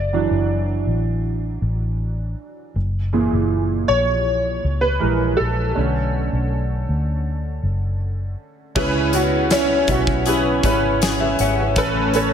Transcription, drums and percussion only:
8.76 kick medium
8.76 crash medium
9.13 closed hi-hat medium
9.51 snare medium
9.51 closed hi-hat medium
9.88 kick medium
9.88 closed hi-hat medium
10.07 kick medium
10.26 closed hi-hat medium
10.63 kick medium
10.63 closed hi-hat medium
11.02 snare loud
11.02 closed hi-hat medium
11.39 closed hi-hat medium
11.76 kick medium
11.76 closed hi-hat medium
12.14 closed hi-hat medium

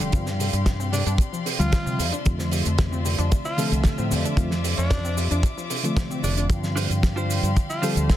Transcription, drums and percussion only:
0.00 closed hi-hat medium
0.00 cabasa soft
0.12 kick loud
0.12 closed hi-hat medium
0.12 cabasa medium
0.26 snare soft
0.26 cabasa soft
0.40 open hi-hat loud
0.40 cabasa medium
0.53 closed hi-hat medium
0.53 cabasa medium
0.66 kick loud
0.66 snare loud
0.66 closed hi-hat medium
0.66 cabasa medium
0.80 cabasa soft
0.93 open hi-hat loud
0.93 cabasa medium
1.06 closed hi-hat medium
1.06 cabasa medium
1.18 kick loud
1.18 closed hi-hat medium
1.18 cabasa medium
1.34 cabasa soft
1.46 open hi-hat loud
1.46 cabasa medium
1.60 closed hi-hat medium
1.60 cabasa soft
1.72 kick loud
1.72 snare loud
1.72 closed hi-hat medium
1.72 cabasa medium
1.87 cabasa soft
1.99 open hi-hat loud
1.99 cabasa medium
2.13 closed hi-hat medium
2.13 cabasa soft
2.25 kick loud
2.25 closed hi-hat medium
2.25 cabasa medium
2.39 snare soft
2.39 cabasa soft
2.51 open hi-hat loud
2.51 cabasa medium
2.65 closed hi-hat medium
2.65 cabasa soft
2.78 kick loud
2.78 snare loud
2.78 closed hi-hat medium
2.78 cabasa medium
2.93 cabasa soft
3.05 open hi-hat loud
3.05 cabasa medium
3.18 closed hi-hat medium
3.18 cabasa soft
3.32 kick loud
3.32 closed hi-hat medium
3.32 cabasa medium
3.45 cabasa soft
3.58 open hi-hat loud
3.58 cabasa medium
3.72 closed hi-hat medium
3.72 cabasa soft
3.84 kick loud
3.84 snare loud
3.84 closed hi-hat medium
3.84 cabasa medium
3.98 cabasa soft
4.11 open hi-hat loud
4.11 cabasa medium
4.25 closed hi-hat medium
4.25 cabasa soft
4.37 kick loud
4.37 closed hi-hat medium
4.37 cabasa medium
4.51 snare soft
4.51 cabasa soft
4.64 open hi-hat loud
4.64 cabasa medium
4.78 closed hi-hat medium
4.78 cabasa soft
4.90 kick loud
4.90 snare loud
4.90 closed hi-hat medium
4.90 cabasa medium
5.05 cabasa soft
5.18 open hi-hat loud
5.18 cabasa medium
5.31 closed hi-hat medium
5.31 cabasa soft
5.43 kick loud
5.43 closed hi-hat medium
5.43 cabasa medium
5.58 cabasa soft
5.70 open hi-hat loud
5.70 cabasa medium
5.84 closed hi-hat medium
5.84 cabasa soft
5.97 kick loud
5.97 snare loud
5.97 closed hi-hat medium
5.97 cabasa medium
6.11 cabasa soft
6.24 open hi-hat loud
6.24 cabasa medium
6.37 closed hi-hat medium
6.37 cabasa soft
6.50 kick loud
6.50 closed hi-hat medium
6.50 cabasa medium
6.64 snare soft
6.64 cabasa soft
6.77 open hi-hat loud
6.77 cabasa medium
6.91 closed hi-hat medium
6.91 cabasa soft
7.03 kick loud
7.03 snare loud
7.03 closed hi-hat medium
7.03 cabasa medium
7.17 cabasa soft
7.30 open hi-hat loud
7.30 cabasa medium
7.43 closed hi-hat medium
7.43 cabasa medium
7.57 kick loud
7.57 closed hi-hat medium
7.57 cabasa medium
7.70 cabasa soft
7.83 open hi-hat loud
7.83 cabasa medium
7.96 closed hi-hat medium
7.96 cabasa medium
8.10 kick loud
8.10 snare loud
8.10 closed hi-hat medium
8.10 cabasa medium

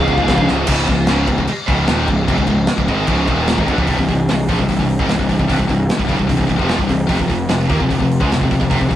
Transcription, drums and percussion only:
0.08 kick medium
0.18 kick medium
0.28 kick medium
0.28 snare loud
0.28 crash medium
0.38 kick medium
0.48 snare medium
0.67 kick loud
0.67 crash loud
0.67 crash medium
0.87 kick medium
0.87 crash medium
1.07 snare loud
1.07 crash medium
1.27 kick medium
1.27 crash medium
1.38 kick medium
1.47 crash medium
1.68 kick loud
1.68 crash medium
1.87 snare loud
1.87 crash medium
2.08 kick medium
2.08 crash medium
2.28 kick loud
2.28 crash medium
2.38 kick medium
2.47 kick medium
2.47 crash medium
2.67 snare loud
2.67 crash medium
2.78 kick loud
2.88 kick medium
2.88 crash medium
3.07 kick loud
3.07 crash medium
3.27 kick loud
3.27 crash medium
3.47 snare loud
3.47 crash medium
3.58 kick loud
3.68 kick medium
3.68 crash medium
3.78 kick medium
3.87 kick medium
3.87 open hi-hat medium
3.99 kick medium
4.08 kick medium
4.08 open hi-hat soft
4.29 snare medium
4.29 open hi-hat medium
4.49 kick medium
4.49 open hi-hat soft
4.59 kick medium
4.69 kick medium
4.69 open hi-hat medium
4.79 kick medium
4.89 open hi-hat soft
4.99 kick medium
5.09 snare medium
5.09 open hi-hat medium
5.19 kick medium
5.29 kick medium
5.29 open hi-hat medium
5.39 kick medium
5.50 kick medium
5.50 open hi-hat medium
5.59 kick medium
5.69 kick medium
5.69 open hi-hat soft
5.90 snare loud
5.90 open hi-hat medium
5.99 kick medium
6.08 kick medium
6.08 open hi-hat soft
6.19 kick medium
6.29 kick medium
6.29 open hi-hat medium
6.39 kick medium
6.49 kick medium
6.49 open hi-hat medium
6.59 kick medium
6.69 snare medium
6.69 open hi-hat medium
6.79 kick medium
6.89 kick medium
6.89 open hi-hat medium
7.09 kick medium
7.09 open hi-hat medium
7.20 kick medium
7.30 kick medium
7.30 open hi-hat medium
7.49 snare loud
7.49 open hi-hat medium
7.70 kick loud
7.70 open hi-hat medium
7.80 kick medium
7.90 kick medium
7.90 open hi-hat medium
8.00 kick medium
8.12 open hi-hat medium
8.21 kick loud
8.32 snare medium
8.32 open hi-hat medium
8.41 kick medium
8.51 kick medium
8.51 open hi-hat medium
8.61 kick medium
8.71 kick medium
8.71 open hi-hat medium
8.81 kick medium
8.91 kick medium
8.91 open hi-hat medium

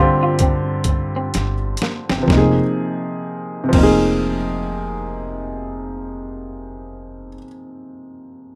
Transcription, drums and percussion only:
0.39 kick medium
0.39 closed hi-hat medium
0.84 kick medium
0.84 closed hi-hat medium
1.34 snare soft
1.34 closed hi-hat medium
1.77 closed hi-hat medium
1.82 snare medium
2.10 snare medium
2.28 kick medium
2.28 snare medium
3.73 kick loud
3.73 crash medium

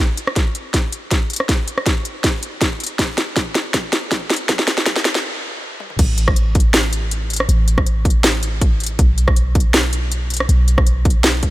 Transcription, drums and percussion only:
0.17 closed hi-hat medium
0.27 cross-stick medium
0.36 kick medium
0.36 snare soft
0.36 closed hi-hat medium
0.55 closed hi-hat medium
0.74 kick loud
0.74 snare medium
0.74 closed hi-hat medium
0.93 closed hi-hat medium
1.11 kick loud
1.11 snare medium
1.11 closed hi-hat medium
1.30 closed hi-hat soft
1.33 closed hi-hat medium
1.36 cross-stick medium
1.36 closed hi-hat medium
1.49 kick medium
1.49 snare medium
1.49 closed hi-hat medium
1.68 closed hi-hat medium
1.78 cross-stick medium
1.86 kick medium
1.86 snare medium
1.86 closed hi-hat medium
2.05 closed hi-hat medium
2.24 kick loud
2.24 snare medium
2.24 closed hi-hat medium
2.43 closed hi-hat medium
2.61 kick medium
2.61 snare medium
2.61 closed hi-hat medium
2.80 closed hi-hat soft
2.84 closed hi-hat medium
2.87 closed hi-hat medium
2.99 kick medium
2.99 snare medium
2.99 closed hi-hat medium
3.18 snare medium
3.18 closed hi-hat medium
3.36 kick loud
3.36 snare medium
3.36 closed hi-hat medium
3.55 snare medium
3.55 closed hi-hat medium
3.74 kick loud
3.74 snare medium
3.74 closed hi-hat medium
3.93 snare medium
3.93 closed hi-hat medium
4.11 kick loud
4.11 snare medium
4.11 closed hi-hat medium
4.30 snare medium
4.30 closed hi-hat soft
4.34 closed hi-hat medium
4.36 closed hi-hat medium
4.49 kick loud
4.49 snare medium
4.49 closed hi-hat medium
4.59 snare medium
4.68 snare medium
4.68 closed hi-hat medium
4.78 snare medium
4.86 kick loud
4.86 snare loud
4.86 closed hi-hat medium
4.96 snare medium
5.05 snare loud
5.05 closed hi-hat medium
5.15 snare medium
5.80 high tom medium
5.90 mid tom medium
5.99 kick loud
5.99 closed hi-hat medium
5.99 crash loud
6.18 closed hi-hat medium
6.28 kick loud
6.28 cross-stick medium
6.36 closed hi-hat medium
6.55 kick loud
6.55 closed hi-hat soft
6.60 closed hi-hat medium
6.74 snare loud
6.74 closed hi-hat medium
6.93 closed hi-hat medium
7.11 closed hi-hat medium
7.30 closed hi-hat soft
7.33 closed hi-hat medium
7.36 cross-stick medium
7.36 closed hi-hat medium
7.49 closed hi-hat medium
7.68 closed hi-hat medium
7.78 kick loud
7.78 cross-stick medium
7.86 closed hi-hat medium
8.05 kick loud
8.05 closed hi-hat soft
8.10 closed hi-hat medium
8.24 snare loud
8.24 closed hi-hat medium
8.43 closed hi-hat medium
8.61 kick loud
8.61 closed hi-hat medium
8.80 closed hi-hat soft
8.84 closed hi-hat medium
8.86 closed hi-hat medium
8.99 kick loud
8.99 closed hi-hat medium
9.18 closed hi-hat medium
9.28 kick loud
9.28 cross-stick medium
9.36 closed hi-hat medium
9.55 kick loud
9.55 closed hi-hat soft
9.60 closed hi-hat medium
9.74 snare loud
9.74 closed hi-hat medium
9.93 closed hi-hat medium
10.12 closed hi-hat medium
10.30 closed hi-hat soft
10.34 closed hi-hat medium
10.37 cross-stick medium
10.37 closed hi-hat medium
10.49 closed hi-hat medium
10.68 closed hi-hat medium
10.78 kick loud
10.78 cross-stick medium
10.87 closed hi-hat medium
11.05 kick loud
11.05 closed hi-hat soft
11.10 closed hi-hat medium
11.24 snare loud
11.24 closed hi-hat medium
11.43 kick medium
11.43 closed hi-hat medium

